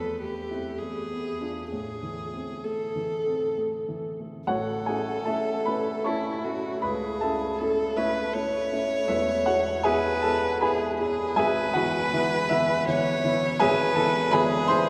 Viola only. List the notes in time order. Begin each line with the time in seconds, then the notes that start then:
Already playing: A4
0.21 G4
0.78 G#4
1.71 G#4
2.64 A4
4.49 A4
6.07 E4
6.44 F#4
6.83 G#4
7.58 A4
7.96 B4
8.34 C#5
9.86 B4
10.63 G#4
11.00 G#4
11.38 B4
12.87 C#5
13.60 B4
14.34 G#4